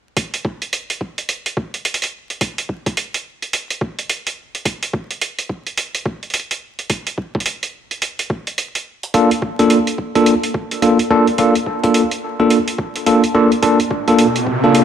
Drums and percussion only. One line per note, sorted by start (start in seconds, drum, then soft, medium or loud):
0.17 kick loud
0.17 closed hi-hat medium
0.34 closed hi-hat soft
0.45 kick loud
0.62 closed hi-hat soft
0.73 closed hi-hat medium
0.90 closed hi-hat medium
1.01 kick medium
1.18 closed hi-hat soft
1.29 closed hi-hat medium
1.46 closed hi-hat medium
1.57 kick loud
1.74 closed hi-hat soft
1.85 closed hi-hat medium
1.94 closed hi-hat medium
2.02 closed hi-hat soft
2.04 closed hi-hat medium
2.30 closed hi-hat soft
2.41 kick loud
2.41 closed hi-hat medium
2.58 closed hi-hat soft
2.69 kick medium
2.86 kick loud
2.86 closed hi-hat soft
2.97 closed hi-hat medium
3.14 closed hi-hat medium
3.42 closed hi-hat soft
3.53 closed hi-hat medium
3.70 closed hi-hat medium
3.81 kick loud
3.99 closed hi-hat soft
4.09 closed hi-hat medium
4.27 closed hi-hat medium
4.55 closed hi-hat soft
4.65 kick loud
4.65 closed hi-hat medium
4.83 closed hi-hat soft
4.93 kick loud
5.11 closed hi-hat soft
5.21 closed hi-hat medium
5.39 closed hi-hat medium
5.49 kick medium
5.67 closed hi-hat soft
5.78 closed hi-hat medium
5.95 closed hi-hat medium
6.05 kick loud
6.23 closed hi-hat soft
6.30 closed hi-hat soft
6.34 closed hi-hat medium
6.39 closed hi-hat soft
6.51 closed hi-hat medium
6.79 closed hi-hat soft
6.90 kick loud
6.90 closed hi-hat medium
7.07 closed hi-hat soft
7.18 kick medium
7.35 kick loud
7.40 closed hi-hat soft
7.46 closed hi-hat medium
7.63 closed hi-hat soft
7.91 closed hi-hat soft
8.02 closed hi-hat medium
8.19 closed hi-hat medium
8.30 kick loud
8.47 closed hi-hat soft
8.58 closed hi-hat medium
8.75 closed hi-hat soft
9.03 closed hi-hat soft
9.14 kick loud
9.14 closed hi-hat medium
9.31 closed hi-hat soft
9.42 kick loud
9.59 closed hi-hat soft
9.70 closed hi-hat medium
9.87 closed hi-hat soft
9.98 kick medium
10.15 closed hi-hat soft
10.26 closed hi-hat medium
10.43 closed hi-hat soft
10.54 kick loud
10.71 closed hi-hat soft
10.82 closed hi-hat medium
10.99 closed hi-hat soft
11.27 closed hi-hat soft
11.38 kick loud
11.38 closed hi-hat medium
11.55 closed hi-hat soft
11.66 kick medium
11.84 kick medium
11.84 closed hi-hat soft
11.94 closed hi-hat medium
12.11 closed hi-hat soft
12.50 closed hi-hat medium
12.68 closed hi-hat soft
12.78 kick loud
12.96 closed hi-hat soft
13.06 closed hi-hat medium
13.24 closed hi-hat soft
13.52 closed hi-hat soft
13.62 kick loud
13.62 closed hi-hat medium
13.80 closed hi-hat soft
13.91 kick medium
14.08 closed hi-hat soft
14.19 closed hi-hat medium
14.36 closed hi-hat soft
14.47 kick medium
14.75 closed hi-hat medium